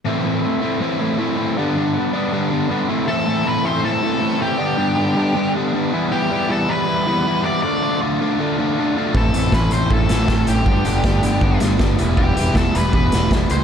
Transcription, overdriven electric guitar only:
X:1
M:4/4
L:1/8
Q:1/4=158
K:Am
V:1 name="Overdriven electric guitar"
[A,,E,A,CE] [A,CE]2 [A,CE] [A,,E,A,CE] [A,CE] [E,A,CE] [A,CE] | [G,,D,G,B,D] [G,B,D]2 [G,B,D] [G,,D,G,B,D] [G,B,D] [D,G,B,D] [A,,E,A,CE] | [A,,E,A,CE] [A,,E,A,CE] [A,,E,A,CE] [A,,E,A,CE] [A,,E,A,CE] [A,,E,A,CE] [A,,E,A,CE] [A,,E,A,CE] | [G,,D,G,B,D] [G,,D,G,B,D] [G,,D,G,B,D] [G,,D,G,B,D] [G,,D,G,B,D] [G,,D,G,B,D] [G,,D,G,B,D] [E,G,B,E] |
[E,G,B,E] [E,G,B,E] [E,G,B,E] [E,G,B,E] [E,G,B,E] [E,G,B,E] [E,G,B,E] [E,G,B,E] | [D,A,DF] [D,A,DF] [D,A,DF] [D,A,DF] [D,A,DF] [D,A,DF] [D,A,DF] [D,A,DF] | [A,,E,A,CE] [A,,E,A,CE] [A,,E,A,CE] [A,,E,A,CE] [A,,E,A,CE] [A,,E,A,CE] [A,,E,A,CE] [A,,E,A,CE] | [G,,D,G,B,D] [G,,D,G,B,D] [G,,D,G,B,D] [G,,D,G,B,D] [G,,D,G,B,D] [G,,D,G,B,D] [G,,D,G,B,D] [E,G,B,E] |
[E,G,B,E] [E,G,B,E] [E,G,B,E] [E,G,B,E] [E,G,B,E] [E,G,B,E] [E,G,B,E] [E,G,B,E] |]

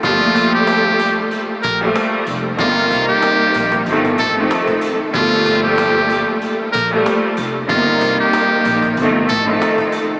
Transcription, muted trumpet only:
X:1
M:4/4
L:1/16
Q:"Swing 16ths" 1/4=94
K:Gm
V:1 name="Muted trumpet"
F3 G4- G z2 B z4 z | F3 G4- G z2 A z4 z | F3 G4- G z2 B z4 z | F3 G4- G z2 A z4 z |]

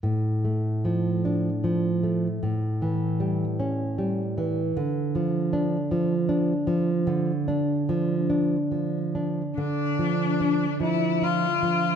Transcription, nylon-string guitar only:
X:1
M:6/8
L:1/8
Q:3/8=50
K:Dm
V:1 name="Nylon-string guitar" clef=bass
A,, A, F, D F, A, | A,, E, G, ^C G, E, | D, F, D F, D F, | D, D F, D F, D |
D, F, D F, D F, |]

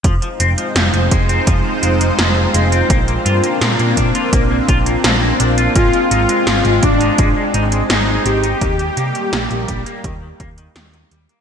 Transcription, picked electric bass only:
X:1
M:4/4
L:1/16
Q:1/4=84
K:Fdor
V:1 name="Picked electric bass" clef=bass
F,,, z F,,, z F,,, F,,, F,,, z F,,, z F,,, z F,,, z F,,, z | B,,, z G,, z B,, B,, B,, z B,,, z B,,, z B,,, z B,,, z | A,,, z A,,, z A,,, A,,, A,,, z A,,, z A,,, z A,,, z A,,, z | E,, z C, z B,,, B,,, B,,, z E,, z E,, z E,, z E,, z |]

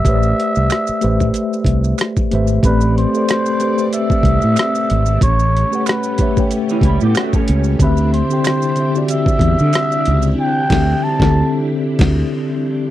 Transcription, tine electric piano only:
X:1
M:4/4
L:1/16
Q:"Swing 16ths" 1/4=93
K:Am
V:1 name="Tine electric piano"
[A,GBc^cd]4- [A,GB=c^cd] z [A,GB=ce]6- [A,GBce] z [A,GBce]2 | [A,CGBd]3 [A,GAcd]3 [A,GBcd] [A,GBcd]6- [A,GBcd] z2 | z3 [A,GB^c^f]3 [A,GBce] [A,GBcg]6- [A,GBcg] z2 | [D,CGe]3 [D,CGg]3 [D,CGe] [D,C^FGd]6- [D,CFGd] z2 |
z2 [D,CGe]2 z [D,CGA]2 z8 z |]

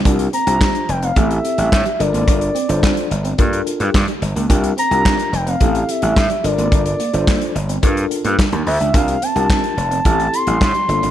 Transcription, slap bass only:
X:1
M:4/4
L:1/16
Q:1/4=108
K:Gdor
V:1 name="Slap bass" clef=bass
C,,2 z C,, z2 F,,,2 A,,,2 z A,,, A,, z G,,, _A,,, | G,,,2 z G,,, z2 G,,,2 G,,2 z G,, G,, z G,,, ^C,, | C,,2 z C,, z2 F,,,2 A,,,2 z A,,, A,, z G,,, _A,,, | G,,,2 z G,,, z2 G,,,2 G,,2 z G,, z _E,, D,, ^C,, |
C,,2 z C,, z2 F,,,2 A,,,2 z A,,, A,, z G,,, _A,,, |]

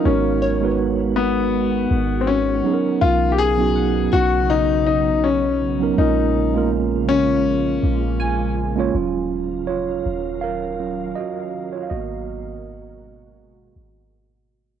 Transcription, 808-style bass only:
X:1
M:4/4
L:1/8
Q:"Swing 16ths" 1/4=81
K:Ebm
V:1 name="808-style bass" clef=bass
A,,,4- A,,, A,,,2 z | =B,,,3 B,,,4- B,,, | B,,,4- B,,, B,,,3 | E,,,3 E,,,3 z2 |
A,,,4- A,,, A,,,3 |]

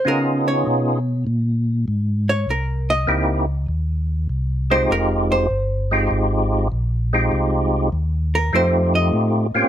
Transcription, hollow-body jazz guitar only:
X:1
M:4/4
L:1/8
Q:"Swing" 1/4=99
K:Fm
V:1 name="Hollow-body jazz guitar"
B d3 z3 d | B ^d3 z3 c | B c3 z4 | z3 B c e2 z |]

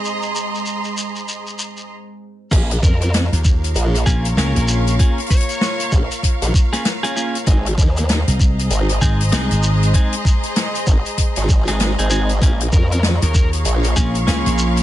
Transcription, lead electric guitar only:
X:1
M:4/4
L:1/16
Q:"Swing 16ths" 1/4=97
K:Bbm
V:1 name="Lead electric guitar"
z16 | z2 B B z8 B B z2 | z2 d4 z8 z2 | z16 |
z16 | z2 B B z B B z8 z |]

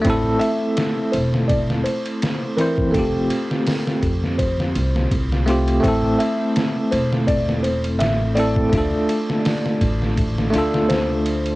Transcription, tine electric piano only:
X:1
M:4/4
L:1/8
Q:"Swing 16ths" 1/4=83
K:Am
V:1 name="Tine electric piano"
[A,CEA]6- [A,CEA] [E,CEc] | [A,CFG]4- [A,CFG] z2 [A,CFG] | [A,CEA]6- [A,CEA] [A,CEA] | [A,DFA]4- [A,DFA] [A,DFA]3 |]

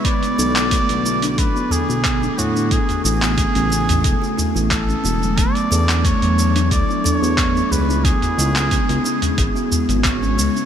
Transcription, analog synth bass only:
X:1
M:4/4
L:1/16
Q:"Swing 16ths" 1/4=90
K:Bdor
V:1 name="Analog synth bass" clef=bass
z2 B,,,2 z B,,,3 A,,, z2 B,,,2 z A,,2 | z2 A,,,2 z A,,,3 E,,, z2 A,,,2 z E,,,2 | z2 E,,2 z E,,3 D,, z2 E,,2 z C,,2 | z2 C,,2 z C,, z2 G,,, z2 G,,,3 C,, z |]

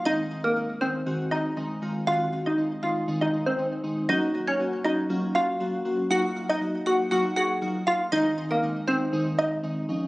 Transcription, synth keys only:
X:1
M:4/4
L:1/8
Q:1/4=119
K:Abmix
V:1 name="Synth keys"
[E,A,CE] [E,A,CE] [E,A,CE] [E,A,CE] [E,A,CG] [E,A,CE] [E,A,CE] [E,A,CF] | [E,A,CG] [E,A,CG] [E,A,CE] [E,A,CE] [E,A,CE] [E,A,CE] [E,A,CE] [E,A,CE] | [G,B,DG] [G,B,DG] [G,B,DG] [G,B,DG] [G,B,DF] [G,B,DG] [G,B,DG] [G,B,DG] | [G,B,EF] [G,B,EF] [G,B,EG] [G,B,EF] [G,B,EF] [G,B,EA] [G,B,EF] [G,B,EF] |
[E,A,CE] [E,A,CE] [E,A,CE] [E,A,CE] [E,A,CE] [E,A,CE] [E,A,CE] [F,A,DE] |]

